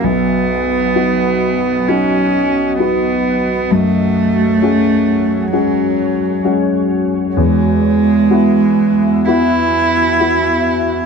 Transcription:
X:1
M:4/4
L:1/8
Q:1/4=65
K:E
V:1 name="Ambient pad"
[F,Fd]8 | [FGc]8 | [B,Fe]8 |]
V:2 name="Grand piano"
B,,,2 [B,DF]2 [B,DF]2 [B,DF]2 | F,,2 [CFG]2 [G,CF]2 [G,CF]2 | E,,2 [B,EF]2 [B,EF]2 [B,EF]2 |]
V:3 name="Cello"
B,4 C2 B,2 | A,4 F,2 z2 | G,4 E4 |]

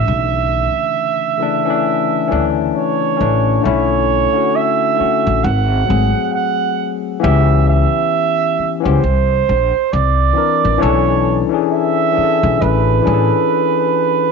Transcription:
X:1
M:4/4
L:1/16
Q:"Swing 16ths" 1/4=67
K:Bdor
V:1 name="Flugelhorn"
e12 c4 | c4 e4 f4 f3 z | e2 e4- e =c4- c d4 | c3 z e4 B8 |]
V:2 name="Tine electric piano"
z6 [C,E,A,D] [E,A,CD]2 z [E,A,CD]3 z [E,A,CD]2 | [D,A,CE]2 z [D,A,CF]2 z [D,A,CF]2 z2 [F,A,^B,G]4- [F,A,B,G] z | [E,B,C=G]6 z [E,B,CG] z6 [E,=CD_B]2 | [E,CDA]2 z [E,CDG]2 z [E,CDGA]3 z [E,CDGA]4- [E,CDGA] z |]
V:3 name="Upright bass" clef=bass
B,,,3 z6 z D,,2 z2 A,,,2 | B,,,3 z4 A,,, G,,,2 G,,, z4 z | C,,3 z4 C,, =C,,2 _B,,, z C,,2 z A,,, | B,,,3 z4 B,,, A,,,2 A,,, z4 z |]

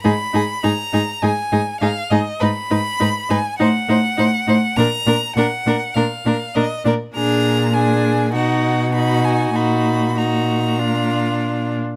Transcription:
X:1
M:4/4
L:1/8
Q:1/4=101
K:G#dor
V:1 name="Violin"
b2 a2 g2 e d | [K:Bbphr] c'3 a ^f4 | b2 g2 f2 e =d | b2 a2 ^f2 =b a |
c'2 b4- b z |]
V:2 name="Violin"
G G G G G G G G | [K:Bbphr] c c c c =c c c c | B B B B B B B B | A2 A2 ^F2 F2 |
G2 G2 F3 z |]
V:3 name="Viola"
D D D D D D D D | [K:Bbphr] E E E E E E E E | =D D D D D D D D | =D2 D2 ^D2 D2 |
E2 E2 =D3 z |]
V:4 name="Cello" clef=bass
G,, G,, G,, G,, G,, G,, G,, G,, | [K:Bbphr] A,, A,, A,, A,, =A,, A,, A,, A,, | B,, B,, B,, B,, B,, B,, B,, B,, | B,,4 =B,,4 |
B,,6- B,, z |]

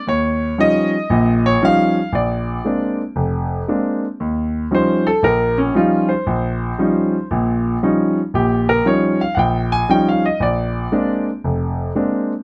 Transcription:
X:1
M:4/4
L:1/8
Q:"Swing" 1/4=116
K:Eb
V:1 name="Grand piano"
_d2 e3 d f2 | d3 z4 z | z2 c =A B _D F c- | c4 z4 |
G B _d f [_g=g] a (3g f e | d3 z4 z |]
V:2 name="Grand piano" clef=bass
E,,2 [F,G,_DE] z [B,,,B,,]2 [F,G,DE] z | B,,,2 [A,B,CD] z F,,,2 [A,B,CD] z | E,,2 [F,G,_DE] z B,,,2 [F,G,DE] z | B,,,2 [F,G,_DE] z [B,,,B,,]2 [F,G,DE] z |
[B,,,B,,]2 [F,G,_DE] z B,,,2 [F,G,DE] z | B,,,2 [A,B,CD] z F,,,2 [A,B,CD] z |]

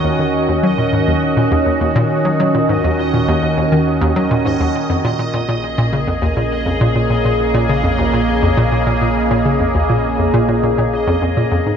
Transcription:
X:1
M:4/4
L:1/16
Q:1/4=102
K:Ebm
V:1 name="Synth texture"
e16- | e16- | e16- | e16- |
e16 |]
V:2 name="Ambient pad"
[E,DG]16- | [E,DG]16 | [D,B,A]16- | [D,B,A]16- |
[D,B,A]16 |]
V:3 name="Synth arpeggio sound" clef=bass
E,, E, z E,, G, B,, A,, E,, z B,, E,, E,, E,, B,, z G, | G, B,, A,, E,, z B,, E,, E,, E,, E, z E,, G, B,, A,, E,, | z F,, B,, B,, B,, B,, z B,, D, F,, E,, B,, z F,, B,, B,, | B,, B,, z B,, D, F,, E,, B,, z F,, B,, B,, B,, B,, z B,, |
D, F,, E,, B,, z F,, B,, B,, B,, B,, z F,, F,, B,, F,, A,, |]
V:4 name="Analog synth bass" clef=bass
E,,16 | E,,16 | B,,,16- | B,,,16- |
B,,,16 |]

